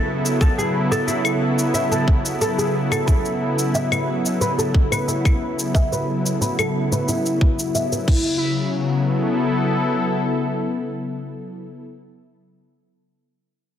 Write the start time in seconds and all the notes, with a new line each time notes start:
Already playing: C#3 F#3 B3 E4 A4
0.26 shaker
0.41 A4, kick, shaker
0.58 G#4, shaker
0.92 A4, shaker
1.07 E4, shaker
1.25 claves, shaker
1.59 shaker
1.74 E5, shaker
1.91 A4, shaker
2.08 kick
2.26 shaker
2.41 A4, shaker
2.58 G#4, shaker
2.92 A4, claves, shaker
3.07 E4, kick, shaker
3.25 shaker
3.59 shaker
3.75 E5, shaker
3.92 B4, claves, shaker
4.26 shaker
4.41 B4, shaker
4.58 A4, shaker
4.74 kick
4.92 B4, claves, shaker
5.08 E4, shaker
5.25 kick, claves, shaker
5.59 shaker
5.74 E5, kick, shaker
5.92 B4, shaker
6.26 shaker
6.41 B4, shaker
6.59 A4, claves, shaker
6.92 B4, shaker
7.08 E4, shaker
7.26 shaker
7.41 kick
7.59 shaker
7.75 E5, shaker
7.92 B4, shaker
8.07 C#3 E4, kick, crash
8.18 F#3
8.61 B3
8.71 E4
8.82 A4